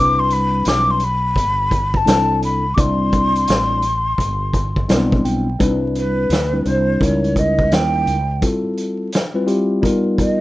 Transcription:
0.00 0.63 C2 loud
0.00 1.00 G3 medium
0.00 1.01 C4 medium
0.00 1.01 D4 medium
0.00 1.01 E4 medium
0.00 1.01 B4 medium
0.00 0.21 D6 loud
0.19 0.34 C6 loud
0.30 0.70 B5 medium
0.30 closed hi-hat medium
0.65 1.33 B1 loud
0.65 0.92 D6 loud
0.65 snare loud
0.65 closed hi-hat medium
0.91 1.05 C6 medium
1.00 closed hi-hat medium
1.04 1.98 B5 loud
1.36 2.03 G1 medium
1.36 kick medium
1.36 closed hi-hat medium
1.71 kick medium
1.71 closed hi-hat medium
1.94 2.44 A5 medium
1.94 kick medium
2.05 2.74 C2 medium
2.05 2.64 G3 medium
2.05 2.64 C4 medium
2.05 2.64 D4 medium
2.05 2.64 E4 medium
2.05 2.65 A4 medium
2.05 snare loud
2.05 closed hi-hat loud
2.43 2.76 B5 medium
2.43 closed hi-hat medium
2.74 3.45 C2 loud
2.74 3.83 G3 medium
2.74 3.83 C4 medium
2.74 3.83 D4 medium
2.74 3.83 E4 medium
2.74 3.83 D5 medium
2.74 2.82 D6 medium
2.74 kick loud
2.74 closed hi-hat medium
2.80 5.26 C6 loud
3.13 kick medium
3.13 closed hi-hat medium
3.36 closed hi-hat medium
3.48 4.16 A1 medium
3.48 snare loud
3.48 closed hi-hat loud
3.82 closed hi-hat medium
4.18 4.86 G1 medium
4.18 kick medium
4.18 closed hi-hat medium
4.54 kick medium
4.54 closed hi-hat medium
4.76 kick medium
4.88 5.24 B1 medium
4.88 5.47 G3 medium
4.88 5.47 C4 medium
4.88 5.47 D4 medium
4.88 5.47 E4 medium
4.88 4.98 A#4 medium
4.88 5.22 D5 medium
4.88 snare loud
4.88 closed hi-hat medium
4.96 5.51 B3 medium
5.12 kick medium
5.25 5.58 B1 medium
5.25 5.58 G5 medium
5.25 closed hi-hat medium
5.59 6.27 C2 loud
5.59 6.27 G3 medium
5.59 6.27 C4 medium
5.59 6.27 D4 medium
5.59 5.68 D#4 medium
5.59 6.27 B4 medium
5.59 kick loud
5.59 closed hi-hat medium
5.67 6.31 E4 medium
5.95 6.69 B4 medium
5.95 closed hi-hat medium
6.30 6.64 D2 medium
6.30 snare loud
6.30 closed hi-hat loud
6.53 6.63 G3 medium
6.53 6.63 C4 medium
6.53 6.63 D4 medium
6.53 6.63 E4 medium
6.53 6.63 B4 medium
6.65 6.99 C2 medium
6.65 6.99 G3 medium
6.65 7.01 C4 medium
6.65 7.01 D4 medium
6.65 7.00 E4 medium
6.65 7.02 C5 medium
6.65 7.04 C5 medium
6.65 closed hi-hat medium
7.00 7.68 C#2 loud
7.00 8.16 G3 medium
7.00 8.16 C#4 medium
7.00 8.16 D#4 medium
7.00 8.16 E4 medium
7.00 8.16 A#4 medium
7.00 7.40 C#5 medium
7.00 kick medium
7.00 closed hi-hat medium
7.24 closed hi-hat soft
7.36 7.75 D#5 medium
7.36 kick medium
7.36 closed hi-hat medium
7.59 kick medium
7.71 8.05 D#2 medium
7.71 8.43 G5 loud
7.71 snare loud
7.71 closed hi-hat medium
8.07 8.41 C#2 medium
8.07 closed hi-hat medium
8.41 9.09 G3 medium
8.41 9.09 C4 medium
8.41 9.10 E4 medium
8.41 9.10 F4 medium
8.41 9.10 A4 medium
8.41 kick loud
8.41 closed hi-hat medium
8.78 closed hi-hat medium
9.12 snare loud
9.12 closed hi-hat loud
9.34 9.44 G3 medium
9.34 9.45 C4 medium
9.34 9.45 E4 medium
9.34 9.45 F4 medium
9.34 9.45 B4 medium
9.46 9.81 G3 medium
9.46 9.83 C4 medium
9.46 9.83 E4 medium
9.46 9.82 F4 medium
9.46 9.83 G4 medium
9.46 closed hi-hat medium
9.82 10.41 G3 medium
9.82 10.41 B3 medium
9.82 10.41 D#4 medium
9.82 10.41 F4 medium
9.82 10.41 A#4 loud
9.82 kick medium
9.82 closed hi-hat medium
10.18 10.41 D#5 medium
10.18 kick medium
10.18 closed hi-hat medium

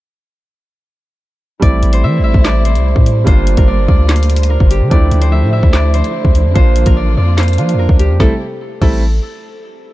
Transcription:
1.60 1.82 A1 loud
1.60 3.25 C3 medium
1.60 3.22 G3 medium
1.60 4.88 G3 medium
1.60 3.23 A3 medium
1.60 3.25 A3 medium
1.60 3.23 C4 medium
1.60 3.25 E4 medium
1.60 3.24 E4 medium
1.60 2.44 D5 loud
1.60 kick loud
1.60 closed hi-hat medium
1.83 2.05 A1 loud
1.83 closed hi-hat medium
1.93 2.65 C5 medium
1.93 closed hi-hat medium
2.03 2.20 E3 loud
2.03 2.23 E5 medium
2.19 2.34 A1 loud
2.24 3.96 E5 medium
2.34 2.77 A1 loud
2.34 kick medium
2.45 3.68 D5 medium
2.45 snare loud
2.45 clap medium
2.65 3.26 C5 medium
2.65 closed hi-hat medium
2.75 2.95 C2 loud
2.75 closed hi-hat medium
2.96 3.26 A2 loud
2.96 kick medium
3.06 closed hi-hat medium
3.24 3.56 G1 loud
3.24 8.16 D3 medium
3.24 4.86 G3 medium
3.24 4.87 A#3 medium
3.24 4.90 A#3 medium
3.24 4.88 D4 medium
3.24 4.90 F4 medium
3.24 4.88 F4 medium
3.24 4.09 C5 loud
3.24 kick loud
3.24 closed hi-hat medium
3.47 closed hi-hat medium
3.57 3.87 G1 loud
3.57 4.49 A#4 medium
3.57 kick medium
3.57 closed hi-hat medium
3.68 3.88 D5 medium
3.88 4.57 D2 loud
3.88 4.91 D5 medium
3.88 kick medium
4.09 5.21 C5 medium
4.09 snare loud
4.09 clap medium
4.09 closed hi-hat medium
4.16 closed hi-hat medium
4.23 closed hi-hat medium
4.30 closed hi-hat medium
4.36 closed hi-hat medium
4.43 closed hi-hat medium
4.50 6.62 A#4 medium
4.60 4.82 G1 loud
4.60 kick loud
4.71 7.06 G4 medium
4.71 closed hi-hat medium
4.81 4.91 D3 loud
4.90 5.11 D2 loud
4.90 6.52 F3 medium
4.90 8.17 F3 medium
4.90 6.54 A3 medium
4.90 6.52 A3 medium
4.90 6.53 D4 medium
4.90 6.54 E4 medium
4.90 6.53 E4 medium
4.90 5.73 D5 loud
4.90 kick loud
4.90 closed hi-hat medium
5.11 5.44 D2 loud
5.11 closed hi-hat medium
5.22 5.93 C5 medium
5.22 closed hi-hat medium
5.32 5.52 E5 medium
5.42 5.62 A2 loud
5.53 7.25 E5 medium
5.63 6.03 D2 loud
5.63 kick medium
5.73 6.96 D5 medium
5.73 snare loud
5.73 clap medium
5.94 6.55 C5 medium
5.94 closed hi-hat medium
6.04 closed hi-hat medium
6.25 6.47 D2 loud
6.25 kick medium
6.35 closed hi-hat medium
6.45 6.55 F2 loud
6.54 6.85 A#1 loud
6.54 7.56 F3 medium
6.54 7.56 A#3 medium
6.54 8.18 A#3 medium
6.54 7.57 D4 medium
6.54 8.18 F4 medium
6.54 7.57 F4 medium
6.54 6.84 C5 loud
6.54 kick loud
6.54 closed hi-hat medium
6.76 closed hi-hat medium
6.86 7.16 A1 loud
6.86 6.95 A#4 medium
6.86 kick medium
6.86 closed hi-hat medium
6.97 7.14 D5 medium
7.17 7.60 F2 loud
7.17 7.34 D5 medium
7.38 7.76 C5 medium
7.38 snare loud
7.38 clap medium
7.38 closed hi-hat medium
7.43 closed hi-hat medium
7.48 closed hi-hat medium
7.53 closed hi-hat soft
7.57 8.19 F3 soft
7.57 7.75 F3 loud
7.57 8.20 A#3 soft
7.57 8.20 D4 soft
7.57 8.20 F4 medium
7.57 closed hi-hat medium
7.69 closed hi-hat medium
7.74 7.88 F2 loud
7.79 7.96 A#4 medium
7.89 8.11 D2 loud
7.89 kick medium
7.99 8.16 G4 medium
7.99 closed hi-hat medium
8.10 8.19 F2 loud
8.20 8.31 A1 loud
8.20 8.39 C3 medium
8.20 8.39 G3 medium
8.20 8.31 G3 medium
8.20 8.39 A3 medium
8.20 8.31 A3 medium
8.20 8.31 C4 medium
8.20 8.39 E4 medium
8.20 8.31 E4 medium
8.20 8.31 A4 medium
8.20 kick loud
8.20 snare medium
8.81 9.20 A1 loud
8.81 9.01 G3 medium
8.81 9.01 A3 medium
8.81 9.01 C4 medium
8.81 9.01 E4 medium
8.81 9.01 A4 medium
8.81 kick loud
8.81 crash medium

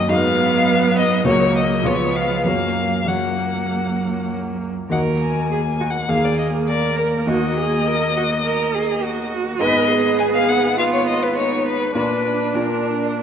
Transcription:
0.00 0.14 F#2 soft
0.00 0.15 A#3 soft
0.00 0.09 F#4 soft
0.00 0.10 D#5 soft
0.00 0.10 D#5 medium
0.08 1.22 G#2 medium
0.08 1.23 F#3 medium
0.08 1.23 B3 soft
0.08 1.23 B3 medium
0.08 1.23 F#4 soft
0.08 1.23 D#5 soft
0.08 0.96 F5 medium
0.99 1.27 D#5 medium
1.24 1.82 C#2 soft
1.24 1.86 F#3 medium
1.24 1.84 A#3 soft
1.24 1.88 A#3 medium
1.24 1.84 F#4 soft
1.24 1.84 C#5 soft
1.24 1.56 C#5 medium
1.57 1.88 D#5 medium
1.83 2.44 C#2 soft
1.83 2.47 F3 medium
1.83 2.44 B3 soft
1.83 2.49 B3 soft
1.83 2.44 F4 soft
1.83 2.45 C#5 soft
1.83 2.18 C#5 medium
2.16 2.46 F5 medium
2.44 3.05 F#2 soft
2.44 3.07 F#3 soft
2.44 3.05 A#3 soft
2.44 3.09 A#3 soft
2.44 3.06 F#4 soft
2.44 3.06 C#5 soft
2.44 3.09 F5 medium
3.06 4.86 F#2 soft
3.06 4.67 F#3 soft
3.06 4.87 A#3 soft
3.06 4.69 A#3 soft
3.06 4.87 F#4 soft
3.06 4.87 C#5 soft
3.06 4.30 F#5 medium
4.90 6.06 D#2 soft
4.90 6.06 A#3 soft
4.90 9.58 A#3 soft
4.90 6.06 F#4 soft
4.90 5.47 A#4 medium
4.90 6.07 D#5 soft
4.90 5.00 F#5 medium
5.22 5.92 G#5 medium
5.52 5.60 G#4 soft
5.80 5.88 F#4 soft
5.90 6.11 F#5 medium
6.08 7.24 D#2 soft
6.08 7.24 A#3 soft
6.08 7.24 G#4 soft
6.08 6.71 G#4 medium
6.08 6.26 F5 medium
6.08 7.25 F5 soft
6.25 6.38 D5 medium
6.39 6.47 D#5 medium
6.69 7.30 A#4 medium
6.69 6.97 D5 medium
6.98 7.06 A#4 medium
7.26 9.57 D#2 soft
7.26 9.57 A#3 soft
7.26 9.57 F#4 soft
7.26 7.57 F#4 medium
7.26 9.58 D#5 soft
7.26 9.29 D#5 medium
7.58 7.89 G#4 medium
7.87 8.16 A#4 medium
8.17 8.25 F#4 medium
8.45 8.76 A#4 medium
8.74 9.05 G#4 medium
9.03 9.62 F#4 medium
9.60 11.91 G#2 medium
9.60 11.92 B3 soft
9.60 11.92 B3 medium
9.60 11.92 G#4 soft
9.60 9.91 B4 medium
9.60 10.16 D#5 medium
9.60 11.92 D#5 soft
9.92 10.79 G#4 medium
10.20 10.26 G#5 medium
10.35 10.50 F5 medium
10.49 10.78 F#5 medium
10.77 11.39 F4 medium
10.77 10.84 F5 medium
10.94 11.07 C#5 medium
11.08 11.25 D#5 medium
11.23 11.37 B4 medium
11.38 11.97 D#4 soft
11.38 11.66 C#5 medium
11.68 11.96 B4 medium
11.95 12.53 A#2 soft
11.95 12.54 A#3 soft
11.95 13.23 D4 soft
11.95 12.54 F4 soft
11.95 12.57 B4 medium
11.95 12.54 D5 soft
12.55 13.23 A#2 soft
12.55 13.23 A#3 soft
12.55 13.23 F4 soft
12.55 13.23 A#4 soft
12.55 13.23 D5 soft

